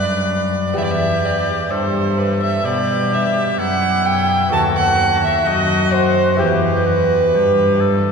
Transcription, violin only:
0.00 0.77 D5 medium
0.77 0.85 E5 medium
0.84 0.92 D5 medium
0.91 1.26 E5 medium
1.25 1.72 D5 medium
1.70 2.20 C5 medium
2.18 2.41 B4 medium
2.42 2.66 E5 medium
2.65 3.15 D5 medium
3.14 3.59 E5 medium
3.60 4.07 F#5 medium
4.06 4.52 G5 loud
4.53 4.61 A5 loud
4.76 5.22 F#5 loud
5.24 5.48 E5 medium
5.46 5.94 D#5 loud
5.93 6.41 C5 loud
6.39 8.12 B4 medium

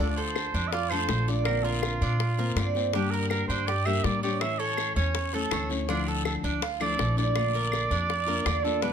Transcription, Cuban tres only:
0.00 0.17 D4 medium
0.18 0.53 A4 medium
0.54 0.72 D4 medium
0.73 0.91 F4 medium
0.92 1.27 A4 medium
1.28 1.64 D5 medium
1.65 2.01 A#4 medium
2.02 2.38 D4 medium
2.39 2.57 A#4 medium
2.58 2.93 D5 medium
2.95 3.12 D4 medium
3.14 3.49 A#4 medium
3.50 3.67 D4 medium
3.68 3.86 G4 medium
3.87 4.22 A#4 medium
4.23 4.59 C#5 medium
4.60 4.95 A4 medium
4.96 5.32 C#4 medium
5.34 5.52 A4 medium
5.53 5.88 C#5 medium
5.90 6.07 D4 medium
6.08 6.43 A4 medium
6.44 6.62 D4 medium
6.63 6.80 F4 medium
6.81 7.17 A4 medium
7.18 7.54 D5 medium
7.55 7.90 A#4 medium
7.91 8.27 D4 medium
8.28 8.46 A#4 medium
8.46 8.82 D5 medium
8.83 8.93 D4 medium

